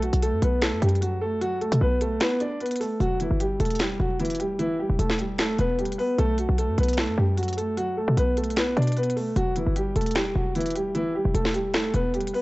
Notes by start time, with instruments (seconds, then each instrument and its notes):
Already playing: 808-style bass B1
0.02 grand piano F#3 F#4, closed hi-hat
0.13 808-style bass B1, closed hi-hat
0.22 grand piano A3 A4, closed hi-hat
0.33 808-style bass F#2
0.42 808-style bass B1, grand piano B3 B4, closed hi-hat
0.62 grand piano A3 A4, finger snap, snare, closed hi-hat
0.72 808-style bass F#2
0.82 808-style bass F#2, grand piano G3 G4, closed hi-hat
0.88 closed hi-hat
0.95 closed hi-hat
1.01 grand piano F#3 F#4, closed hi-hat
1.21 grand piano A3 A4
1.41 grand piano F#3 F#4, closed hi-hat
1.61 grand piano A3 A4, closed hi-hat
1.72 808-style bass B2, closed hi-hat
1.81 808-style bass B1, grand piano B3 B4
2.01 grand piano A3 A4, closed hi-hat
2.20 grand piano B3 B4, finger snap, snare, closed hi-hat
2.40 grand piano D4 D5, closed hi-hat
2.61 grand piano B3 B4, closed hi-hat
2.66 closed hi-hat
2.71 closed hi-hat
2.76 closed hi-hat
2.80 grand piano A3 A4, open hi-hat
3.00 808-style bass E1, grand piano F#3 F#4, closed hi-hat
3.20 grand piano E3 E4, closed hi-hat
3.31 808-style bass G1
3.40 grand piano G3 G4, closed hi-hat
3.60 808-style bass E1, grand piano A3 A4, closed hi-hat, open hi-hat
3.65 closed hi-hat
3.70 closed hi-hat
3.75 closed hi-hat
3.79 grand piano G3 G4, finger snap, snare, closed hi-hat
3.99 808-style bass E1, grand piano F#3 F#4
4.19 grand piano E3 E4, closed hi-hat
4.25 closed hi-hat
4.30 closed hi-hat
4.35 closed hi-hat
4.40 grand piano G3 G4, closed hi-hat
4.59 grand piano E3 E4, closed hi-hat
4.80 grand piano G3 G4
4.90 808-style bass E1
4.99 808-style bass E1, grand piano A3 A4, closed hi-hat
5.10 snare
5.18 grand piano G3 G4, closed hi-hat
5.38 grand piano A3 A4, finger snap, snare, closed hi-hat
5.58 808-style bass E1, grand piano B3 B4, closed hi-hat
5.78 grand piano G3 G4, closed hi-hat
5.85 closed hi-hat
5.92 closed hi-hat
5.98 grand piano B3 B4, open hi-hat
6.18 808-style bass B1, grand piano A3 A4, closed hi-hat
6.38 grand piano F#3 F#4, closed hi-hat
6.49 808-style bass B1
6.58 grand piano A3 A4, closed hi-hat
6.68 808-style bass F#2
6.78 808-style bass B1, grand piano B3 B4, closed hi-hat, open hi-hat
6.83 closed hi-hat
6.88 closed hi-hat
6.93 closed hi-hat
6.97 grand piano A3 A4, finger snap, snare, closed hi-hat
7.08 808-style bass F#2
7.18 808-style bass F#2, grand piano G3 G4
7.37 grand piano F#3 F#4, closed hi-hat
7.43 closed hi-hat
7.48 closed hi-hat
7.53 closed hi-hat
7.57 grand piano A3 A4, closed hi-hat
7.77 grand piano F#3 F#4, closed hi-hat
7.97 grand piano A3 A4
8.08 808-style bass B2
8.17 808-style bass B1, grand piano B3 B4, closed hi-hat
8.37 grand piano A3 A4, closed hi-hat
8.43 closed hi-hat
8.50 closed hi-hat
8.56 grand piano B3 B4, finger snap, snare, closed hi-hat
8.77 808-style bass B2, grand piano D4 D5, closed hi-hat
8.82 closed hi-hat
8.87 closed hi-hat
8.92 closed hi-hat
8.96 grand piano B3 B4, closed hi-hat
9.03 closed hi-hat
9.10 closed hi-hat
9.16 grand piano A3 A4, open hi-hat
9.36 808-style bass E1, grand piano F#3 F#4, closed hi-hat
9.56 grand piano E3 E4, closed hi-hat
9.66 808-style bass G1
9.76 grand piano G3 G4, closed hi-hat
9.96 808-style bass E1, grand piano A3 A4, closed hi-hat, open hi-hat
10.01 closed hi-hat
10.06 closed hi-hat
10.11 closed hi-hat
10.15 grand piano G3 G4, finger snap, snare, closed hi-hat
10.35 808-style bass E1, grand piano F#3 F#4
10.55 grand piano E3 E4, closed hi-hat
10.61 closed hi-hat
10.66 closed hi-hat
10.71 closed hi-hat
10.76 grand piano G3 G4, closed hi-hat
10.95 grand piano E3 E4, closed hi-hat
11.15 grand piano G3 G4
11.25 808-style bass E1
11.35 808-style bass E1, grand piano A3 A4, closed hi-hat
11.45 snare
11.54 grand piano G3 G4, closed hi-hat
11.74 grand piano A3 A4, finger snap, snare, closed hi-hat
11.94 808-style bass E1, grand piano B3 B4, closed hi-hat
12.14 grand piano G3 G4, closed hi-hat
12.21 closed hi-hat
12.28 closed hi-hat
12.34 grand piano B3 B4, open hi-hat